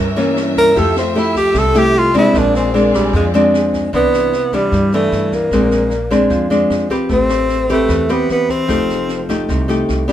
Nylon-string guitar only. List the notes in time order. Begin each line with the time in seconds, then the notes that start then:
Already playing: G2
0.16 E3 A#3 C#4
0.76 F3 A3 E4 G4
1.15 A3 E4 G4
1.55 C3
1.75 A3 E4 G4
2.14 G#3 C4 D4
2.35 A#2
2.74 G#3 C4 D4
3.13 F3
3.34 G#3 C4 D4
3.93 C3 E3 B3 D4
4.53 E3 B3 D4
4.73 G2
4.94 E3 B3 D4
5.53 A#2 G#3 C4 D4
6.11 G#3 C4 D4
6.31 F3
6.50 G#3 C4 D4
6.90 C4 G4 B4
7.09 A3
7.70 C4 G4 B4
7.88 E3
8.09 C4 G4 B4
8.68 F3 A3 D#4 G4
9.29 A3 D#4 G4
9.49 C3
9.68 A3 D#4 G4
10.08 B3 D4 G4